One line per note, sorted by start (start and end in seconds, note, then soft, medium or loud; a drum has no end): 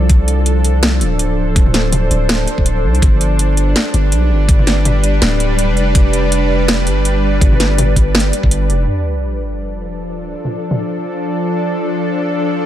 0.00 1.03 C2 medium
0.00 2.98 F3 medium
0.00 8.84 D4 medium
0.00 2.98 A4 medium
0.09 2.99 C5 medium
0.09 kick loud
0.09 closed hi-hat medium
0.28 closed hi-hat medium
0.46 closed hi-hat medium
0.64 closed hi-hat medium
0.83 snare loud
0.83 closed hi-hat medium
1.01 1.55 D1 medium
1.01 closed hi-hat medium
1.19 closed hi-hat medium
1.56 2.10 D1 loud
1.56 kick loud
1.56 closed hi-hat medium
1.66 mid tom soft
1.74 snare medium
1.74 closed hi-hat medium
1.92 closed hi-hat medium
1.92 mid tom medium
2.11 2.47 D1 medium
2.11 closed hi-hat medium
2.29 snare loud
2.29 closed hi-hat medium
2.47 closed hi-hat medium
2.58 2.86 D1 medium
2.58 kick medium
2.66 closed hi-hat medium
2.84 3.01 C2 loud
2.95 closed hi-hat soft
3.02 3.75 G1 loud
3.02 8.84 G3 medium
3.02 8.84 B4 medium
3.02 8.84 D5 loud
3.02 kick loud
3.02 closed hi-hat medium
3.21 closed hi-hat medium
3.39 closed hi-hat medium
3.57 closed hi-hat medium
3.76 snare loud
3.76 closed hi-hat medium
3.94 4.14 G1 medium
3.94 closed hi-hat medium
4.12 4.32 B1 medium
4.12 closed hi-hat medium
4.30 5.21 G1 loud
4.49 kick loud
4.49 closed hi-hat medium
4.59 mid tom soft
4.67 snare medium
4.67 closed hi-hat medium
4.85 closed hi-hat medium
4.85 mid tom medium
5.04 closed hi-hat medium
5.22 5.71 D1 medium
5.22 snare loud
5.22 closed hi-hat medium
5.40 closed hi-hat medium
5.59 closed hi-hat medium
5.69 6.88 F1 medium
5.77 closed hi-hat soft
5.95 kick loud
5.95 closed hi-hat medium
6.13 closed hi-hat medium
6.32 closed hi-hat medium
6.68 snare loud
6.68 closed hi-hat medium
6.86 7.40 G1 medium
6.86 closed hi-hat medium
7.05 closed hi-hat medium
7.41 7.95 G1 loud
7.41 kick loud
7.41 closed hi-hat medium
7.52 mid tom soft
7.60 snare medium
7.60 closed hi-hat medium
7.78 closed hi-hat medium
7.78 mid tom medium
7.96 8.32 G1 medium
7.96 kick medium
7.96 closed hi-hat medium
8.15 snare loud
8.20 closed hi-hat medium
8.33 closed hi-hat medium
8.43 8.71 G1 medium
8.43 kick medium
8.51 closed hi-hat medium
8.69 8.87 F1 loud
8.69 closed hi-hat soft
8.88 12.66 F3 medium
8.88 12.66 D4 medium
8.88 12.66 A4 medium
8.88 12.66 D5 medium
8.88 sub drop medium
10.45 mid tom soft
10.71 mid tom medium